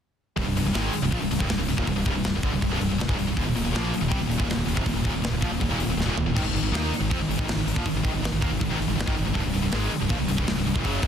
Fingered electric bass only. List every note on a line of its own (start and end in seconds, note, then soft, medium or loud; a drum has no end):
0.38 0.45 C1 medium
0.46 0.55 C1 medium
0.55 0.64 C1 medium
0.64 0.73 C1 medium
0.75 0.92 G#1 medium
0.94 muted fingered electric bass stroke soft
1.02 1.11 C1 medium
1.12 1.20 A#1 medium
1.21 1.30 C1 medium
1.30 1.39 C1 medium
1.41 1.49 C1 medium
1.49 1.57 C1 medium
1.58 1.67 C1 medium
1.67 1.76 C1 medium
1.78 1.86 D#1 loud
1.87 1.95 C1 medium
1.96 2.05 C1 medium
2.06 2.14 C1 loud
2.15 2.23 C1 medium
2.24 2.33 C1 medium
2.35 2.43 C1 medium
2.43 2.51 G1 medium
2.54 2.61 C1 medium
2.62 2.70 C1 medium
2.71 2.80 C1 loud
2.81 2.89 C1 medium
2.91 2.99 C1 medium
3.00 3.08 C1 medium
3.09 3.17 C#1 loud
3.19 3.27 C1 medium
3.28 3.36 C1 medium
3.37 3.45 D#1 medium
3.47 3.55 D#1 medium
3.57 3.65 D#1 medium
3.65 3.73 D#1 medium
3.74 3.91 A#1 loud
3.93 muted fingered electric bass stroke soft
4.02 4.10 D#1 medium
4.11 4.18 C2 medium
4.19 4.28 D#1 medium
4.29 4.38 D#1 medium
4.40 4.47 D#1 medium
4.48 4.56 D#1 medium
4.56 4.66 D#1 medium
4.66 4.75 D#1 medium
4.77 4.85 F1 loud
4.86 4.93 D#1 medium
4.93 5.03 D#1 medium
5.05 5.13 D#1 loud
5.14 5.22 D#1 medium
5.22 5.30 D#1 medium
5.31 5.40 D#1 medium
5.42 5.49 A#1 medium
5.50 5.59 D#1 medium
5.61 5.67 D#1 medium
5.68 5.78 D#1 medium
5.78 5.87 D#1 medium
5.87 5.96 D#1 medium
5.97 6.05 D#1 medium
6.06 6.15 D#1 loud
6.16 6.25 D#1 medium
6.26 6.35 D#1 medium
6.36 6.43 G#1 medium
6.43 6.52 G#1 medium
6.53 6.61 G#1 medium
6.62 6.71 G#1 medium
6.72 6.90 D#2 loud
6.91 muted fingered electric bass stroke soft
7.01 7.09 G#1 medium
7.11 7.18 F2 medium
7.19 7.28 G#1 medium
7.28 7.37 G#1 medium
7.38 7.47 G#1 medium
7.48 7.55 G#1 medium
7.56 7.65 G#1 medium
7.66 7.75 G#1 medium
7.77 7.85 A#1 medium
7.85 7.93 G#1 medium
7.94 8.03 G#1 medium
8.05 8.12 G#1 medium
8.13 8.21 G#1 medium
8.22 8.31 G#1 medium
8.32 8.41 G#1 medium
8.42 8.50 D#2 medium
8.51 8.60 G#1 medium
8.61 8.69 G#1 medium
8.70 8.78 G#1 loud
8.80 8.88 G#1 medium
8.89 8.97 G#1 medium
8.99 9.07 G#1 medium
9.07 9.16 G#1 medium
9.19 9.26 G#1 medium
9.27 9.35 G#1 medium
9.35 9.44 C1 loud
9.45 9.53 C1 medium
9.54 9.62 C1 medium
9.64 9.72 C1 medium
9.73 9.89 G#1 medium
9.93 muted fingered electric bass stroke soft
10.02 10.09 C1 medium
10.10 10.18 A#1 medium
10.20 10.28 C1 medium
10.29 10.37 C1 medium
10.38 10.46 C1 loud
10.48 10.56 C1 medium
10.57 10.65 C1 medium
10.66 10.74 C1 medium
10.75 10.83 D#1 medium
10.85 11.01 F#1 medium
11.02 11.07 D#1 medium